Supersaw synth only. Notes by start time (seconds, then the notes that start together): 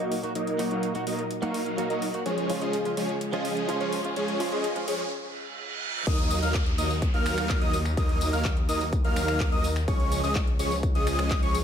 0.00 F#3 A#3 D#4 A#4 D#5
0.35 F#3 A#3 D#4 A#4 D#5
0.71 F#3 A#3 D#4 A#4 F5
1.07 F#3 A#3 D#4 A#4 D#5
1.43 F#3 A#3 D#4 A#4 F5
1.90 F#3 A#3 D#4 A#4 D#5
2.26 F3 G#3 C#4 G#4 C#5
2.62 F3 G#3 C#4 G#4 D#5
2.97 F3 G#3 C#4 G#4 C#5
3.33 F3 G#3 C#4 G#4 D#5
3.81 F3 G#3 C#4 G#4 C#5
4.16 F3 G#3 C#4 G#4 C#5
4.52 F3 G#3 C#4 G#4 D#5
4.88 F3 G#3 C#4 G#4 C#5
6.07 F#3 A#3 D#4 A#4 D#5
6.43 F#3 A#3 D#4 A#4 F5
6.78 F#3 A#3 D#4 A#4 D#5
7.14 F#3 A#3 D#4 A#4 F5
7.62 F#3 A#3 D#4 A#4 D#5
7.97 F#3 A#3 D#4 A#4 D#5
8.33 F#3 A#3 D#4 A#4 F5
8.69 F#3 A#3 D#4 A#4 D#5
9.05 F#3 A#3 D#4 A#4 F5
9.52 F#3 A#3 D#4 A#4 D#5
9.88 F3 G#3 C#4 G#4 C#5
10.24 F3 G#3 C#4 G#4 D#5
10.59 F3 G#3 C#4 G#4 C#5
10.95 F3 G#3 C#4 G#4 D#5
11.43 F3 G#3 C#4 G#4 C#5